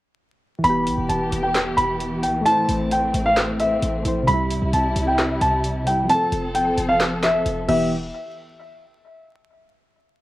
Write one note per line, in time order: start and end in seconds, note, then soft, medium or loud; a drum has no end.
0.59 2.40 E3 medium
0.64 0.88 E1 loud
0.64 4.24 E3 medium
0.64 2.44 B3 medium
0.64 2.42 B3 medium
0.64 2.44 G4 medium
0.64 1.07 B5 loud
0.64 closed hi-hat medium
0.70 2.45 G4 medium
0.87 0.98 B1 loud
0.87 closed hi-hat medium
0.98 1.09 E1 loud
1.09 1.31 E1 loud
1.09 1.41 A5 medium
1.09 closed hi-hat medium
1.32 1.76 E1 loud
1.32 closed hi-hat medium
1.43 1.53 G5 medium
1.55 snare loud
1.55 clap loud
1.55 closed hi-hat medium
1.77 2.25 E1 loud
1.77 2.20 B5 medium
1.77 closed hi-hat medium
2.00 closed hi-hat medium
2.22 2.45 B1 loud
2.22 2.43 G5 medium
2.22 closed hi-hat medium
2.41 3.99 A3 medium
2.45 4.26 A3 medium
2.45 4.26 C4 medium
2.45 4.02 E4 medium
2.45 2.88 A5 loud
2.45 closed hi-hat medium
2.52 4.05 C5 medium
2.69 3.12 A1 loud
2.69 closed hi-hat medium
2.91 3.24 G5 medium
2.91 closed hi-hat medium
3.14 3.79 A1 loud
3.14 closed hi-hat medium
3.26 3.36 F5 loud
3.37 snare loud
3.37 clap loud
3.37 closed hi-hat medium
3.59 4.24 E5 medium
3.59 closed hi-hat medium
3.82 4.04 A1 loud
3.82 closed hi-hat medium
4.02 4.27 A1 loud
4.02 4.26 A3 medium
4.02 4.28 E4 soft
4.02 closed hi-hat medium
4.08 4.29 C5 medium
4.22 5.81 C3 medium
4.27 4.60 C2 loud
4.27 6.08 C3 medium
4.27 6.08 G3 medium
4.27 5.84 G3 medium
4.27 6.08 E4 medium
4.27 4.70 B5 loud
4.27 closed hi-hat medium
4.33 5.86 E4 medium
4.50 closed hi-hat medium
4.62 4.73 C2 loud
4.73 4.95 C2 loud
4.73 5.05 A5 medium
4.73 closed hi-hat medium
4.96 5.39 C2 loud
4.96 closed hi-hat medium
5.07 5.17 G5 medium
5.19 snare loud
5.19 clap medium
5.19 closed hi-hat medium
5.41 5.88 C2 loud
5.41 5.84 A5 medium
5.41 closed hi-hat medium
5.64 closed hi-hat medium
5.84 6.08 B1 loud
5.84 6.08 C3 medium
5.84 6.10 G3 soft
5.84 6.07 G5 medium
5.84 closed hi-hat medium
5.90 6.11 E4 medium
6.04 7.63 F3 medium
6.09 7.67 F3 medium
6.09 7.65 C4 medium
6.09 7.67 C4 medium
6.09 7.67 A4 medium
6.09 6.52 A5 loud
6.09 closed hi-hat medium
6.15 7.68 A4 medium
6.32 6.76 F1 loud
6.32 closed hi-hat medium
6.55 6.87 G5 medium
6.55 closed hi-hat medium
6.78 7.43 F1 loud
6.78 closed hi-hat medium
6.89 6.99 F5 medium
7.00 snare loud
7.00 clap loud
7.00 closed hi-hat medium
7.23 7.66 E5 medium
7.23 snare loud
7.23 clap medium
7.23 closed hi-hat medium
7.46 7.68 F1 loud
7.46 closed hi-hat medium
7.68 8.11 E1 loud
7.68 7.90 E3 medium
7.68 7.90 B3 medium
7.68 7.90 G4 loud
7.68 7.90 G4 medium
7.68 7.90 E5 medium
7.68 crash medium